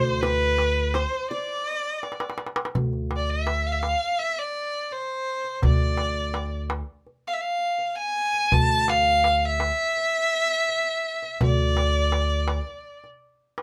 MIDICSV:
0, 0, Header, 1, 5, 480
1, 0, Start_track
1, 0, Tempo, 722022
1, 1828, Time_signature, 4, 2, 24, 8
1, 9058, End_track
2, 0, Start_track
2, 0, Title_t, "Violin"
2, 0, Program_c, 0, 40
2, 0, Note_on_c, 0, 72, 84
2, 142, Note_on_c, 0, 71, 97
2, 152, Note_off_c, 0, 72, 0
2, 626, Note_on_c, 0, 72, 80
2, 636, Note_off_c, 0, 71, 0
2, 866, Note_off_c, 0, 72, 0
2, 870, Note_on_c, 0, 74, 80
2, 1562, Note_off_c, 0, 74, 0
2, 2103, Note_on_c, 0, 74, 78
2, 2191, Note_on_c, 0, 76, 78
2, 2201, Note_off_c, 0, 74, 0
2, 2435, Note_on_c, 0, 77, 87
2, 2445, Note_off_c, 0, 76, 0
2, 2470, Note_on_c, 0, 76, 72
2, 2480, Note_off_c, 0, 77, 0
2, 2517, Note_on_c, 0, 77, 91
2, 2527, Note_off_c, 0, 76, 0
2, 2784, Note_on_c, 0, 76, 89
2, 2794, Note_off_c, 0, 77, 0
2, 2915, Note_on_c, 0, 74, 80
2, 2925, Note_off_c, 0, 76, 0
2, 3273, Note_on_c, 0, 72, 79
2, 3283, Note_off_c, 0, 74, 0
2, 3749, Note_off_c, 0, 72, 0
2, 3759, Note_on_c, 0, 74, 81
2, 4377, Note_off_c, 0, 74, 0
2, 4836, Note_on_c, 0, 77, 76
2, 4874, Note_on_c, 0, 76, 67
2, 4884, Note_off_c, 0, 77, 0
2, 4924, Note_on_c, 0, 77, 80
2, 4934, Note_off_c, 0, 76, 0
2, 5300, Note_off_c, 0, 77, 0
2, 5304, Note_on_c, 0, 80, 104
2, 5672, Note_on_c, 0, 81, 110
2, 5682, Note_off_c, 0, 80, 0
2, 5911, Note_on_c, 0, 77, 106
2, 5921, Note_off_c, 0, 81, 0
2, 6283, Note_on_c, 0, 76, 100
2, 6293, Note_off_c, 0, 77, 0
2, 7594, Note_off_c, 0, 76, 0
2, 7607, Note_on_c, 0, 74, 94
2, 8668, Note_off_c, 0, 74, 0
2, 9058, End_track
3, 0, Start_track
3, 0, Title_t, "Qanun"
3, 0, Program_c, 1, 107
3, 0, Note_on_c, 1, 72, 73
3, 0, Note_on_c, 1, 74, 68
3, 150, Note_on_c, 1, 71, 68
3, 190, Note_off_c, 1, 72, 0
3, 332, Note_off_c, 1, 74, 0
3, 630, Note_on_c, 1, 72, 64
3, 670, Note_off_c, 1, 71, 0
3, 870, Note_on_c, 1, 74, 59
3, 1332, Note_off_c, 1, 72, 0
3, 1562, Note_off_c, 1, 74, 0
3, 9058, End_track
4, 0, Start_track
4, 0, Title_t, "Upright bass"
4, 0, Program_c, 2, 32
4, 0, Note_on_c, 2, 38, 105
4, 692, Note_off_c, 2, 38, 0
4, 1829, Note_on_c, 2, 38, 94
4, 2612, Note_off_c, 2, 38, 0
4, 3741, Note_on_c, 2, 38, 100
4, 4527, Note_off_c, 2, 38, 0
4, 5661, Note_on_c, 2, 38, 100
4, 6447, Note_off_c, 2, 38, 0
4, 7583, Note_on_c, 2, 38, 101
4, 8369, Note_off_c, 2, 38, 0
4, 9058, End_track
5, 0, Start_track
5, 0, Title_t, "Darbuka"
5, 30, Note_on_c, 9, 62, 24
5, 97, Note_off_c, 9, 62, 0
5, 152, Note_on_c, 9, 63, 59
5, 218, Note_off_c, 9, 63, 0
5, 388, Note_on_c, 9, 63, 55
5, 454, Note_off_c, 9, 63, 0
5, 625, Note_on_c, 9, 63, 62
5, 692, Note_off_c, 9, 63, 0
5, 751, Note_on_c, 9, 62, 23
5, 818, Note_off_c, 9, 62, 0
5, 867, Note_on_c, 9, 62, 24
5, 934, Note_off_c, 9, 62, 0
5, 1350, Note_on_c, 9, 63, 51
5, 1409, Note_on_c, 9, 62, 58
5, 1417, Note_off_c, 9, 63, 0
5, 1464, Note_on_c, 9, 63, 69
5, 1475, Note_off_c, 9, 62, 0
5, 1527, Note_on_c, 9, 62, 70
5, 1530, Note_off_c, 9, 63, 0
5, 1580, Note_on_c, 9, 63, 66
5, 1593, Note_off_c, 9, 62, 0
5, 1639, Note_on_c, 9, 62, 70
5, 1647, Note_off_c, 9, 63, 0
5, 1702, Note_on_c, 9, 63, 86
5, 1705, Note_off_c, 9, 62, 0
5, 1763, Note_on_c, 9, 62, 84
5, 1768, Note_off_c, 9, 63, 0
5, 1828, Note_on_c, 9, 64, 77
5, 1829, Note_off_c, 9, 62, 0
5, 1895, Note_off_c, 9, 64, 0
5, 1948, Note_on_c, 9, 62, 26
5, 2014, Note_off_c, 9, 62, 0
5, 2065, Note_on_c, 9, 63, 57
5, 2132, Note_off_c, 9, 63, 0
5, 2305, Note_on_c, 9, 63, 67
5, 2372, Note_off_c, 9, 63, 0
5, 2545, Note_on_c, 9, 63, 61
5, 2611, Note_off_c, 9, 63, 0
5, 2789, Note_on_c, 9, 62, 24
5, 2855, Note_off_c, 9, 62, 0
5, 3267, Note_on_c, 9, 62, 23
5, 3333, Note_off_c, 9, 62, 0
5, 3619, Note_on_c, 9, 62, 23
5, 3685, Note_off_c, 9, 62, 0
5, 3739, Note_on_c, 9, 64, 79
5, 3805, Note_off_c, 9, 64, 0
5, 3863, Note_on_c, 9, 62, 24
5, 3929, Note_off_c, 9, 62, 0
5, 3972, Note_on_c, 9, 63, 59
5, 4039, Note_off_c, 9, 63, 0
5, 4214, Note_on_c, 9, 63, 66
5, 4281, Note_off_c, 9, 63, 0
5, 4453, Note_on_c, 9, 63, 72
5, 4520, Note_off_c, 9, 63, 0
5, 4697, Note_on_c, 9, 62, 23
5, 4763, Note_off_c, 9, 62, 0
5, 5176, Note_on_c, 9, 62, 24
5, 5242, Note_off_c, 9, 62, 0
5, 5539, Note_on_c, 9, 62, 26
5, 5606, Note_off_c, 9, 62, 0
5, 5664, Note_on_c, 9, 64, 77
5, 5731, Note_off_c, 9, 64, 0
5, 5787, Note_on_c, 9, 62, 26
5, 5853, Note_off_c, 9, 62, 0
5, 5904, Note_on_c, 9, 63, 67
5, 5971, Note_off_c, 9, 63, 0
5, 6144, Note_on_c, 9, 63, 63
5, 6210, Note_off_c, 9, 63, 0
5, 6382, Note_on_c, 9, 63, 68
5, 6448, Note_off_c, 9, 63, 0
5, 6625, Note_on_c, 9, 62, 26
5, 6691, Note_off_c, 9, 62, 0
5, 7104, Note_on_c, 9, 62, 27
5, 7170, Note_off_c, 9, 62, 0
5, 7462, Note_on_c, 9, 62, 30
5, 7529, Note_off_c, 9, 62, 0
5, 7583, Note_on_c, 9, 64, 91
5, 7650, Note_off_c, 9, 64, 0
5, 7823, Note_on_c, 9, 63, 62
5, 7889, Note_off_c, 9, 63, 0
5, 8059, Note_on_c, 9, 63, 65
5, 8126, Note_off_c, 9, 63, 0
5, 8294, Note_on_c, 9, 63, 73
5, 8361, Note_off_c, 9, 63, 0
5, 8424, Note_on_c, 9, 62, 30
5, 8490, Note_off_c, 9, 62, 0
5, 8667, Note_on_c, 9, 62, 29
5, 8734, Note_off_c, 9, 62, 0
5, 9027, Note_on_c, 9, 63, 57
5, 9058, Note_off_c, 9, 63, 0
5, 9058, End_track
0, 0, End_of_file